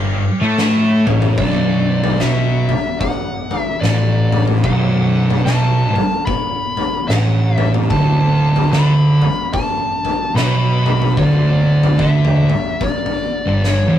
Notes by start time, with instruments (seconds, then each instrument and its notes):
Already playing: picked electric bass G1, distorted electric guitar G2
0.41 picked electric bass A2, distorted electric guitar A3
0.58 snare
1.07 picked electric bass A1, distorted electric guitar A2, mid tom
1.22 floor tom
1.37 picked electric bass B0, distorted electric guitar B1, lead electric guitar D5, kick, floor tom
2.04 floor tom
2.20 picked electric bass B1, distorted electric guitar B2, lead electric guitar E5, snare
2.69 floor tom
3.00 lead electric guitar F#5, kick, floor tom
3.51 floor tom
3.61 lead electric guitar E5
3.80 picked electric bass A1, distorted electric guitar A2, lead electric guitar D5, snare
4.32 floor tom
4.47 floor tom
4.64 picked electric bass B0, distorted electric guitar B1, lead electric guitar F#5, kick, floor tom
5.30 floor tom
5.45 picked electric bass B1, distorted electric guitar B2, lead electric guitar A5, snare
5.96 floor tom
6.26 lead electric guitar B5, kick, floor tom
6.77 floor tom
7.08 picked electric bass A1, distorted electric guitar A2, lead electric guitar F#5, snare
7.56 lead electric guitar E5, floor tom
7.74 floor tom
7.90 picked electric bass D1, distorted electric guitar D2, lead electric guitar A5, kick, floor tom
8.56 floor tom
8.72 picked electric bass D2, distorted electric guitar D3, lead electric guitar B5, snare
9.22 floor tom
9.53 lead electric guitar A5, kick, floor tom
10.05 floor tom
10.35 picked electric bass B1, distorted electric guitar B2, lead electric guitar B5, snare
10.86 floor tom
11.02 floor tom
11.17 picked electric bass D1, distorted electric guitar D2, lead electric guitar D5, kick, floor tom
11.83 floor tom
11.99 picked electric bass D2, distorted electric guitar D3, lead electric guitar E5, kick
12.25 mid tom
12.50 floor tom
12.81 lead electric guitar D5, kick, floor tom
13.06 floor tom
13.46 picked electric bass G1, distorted electric guitar G2
13.64 lead electric guitar C#5, snare
13.88 picked electric bass E1, distorted electric guitar E2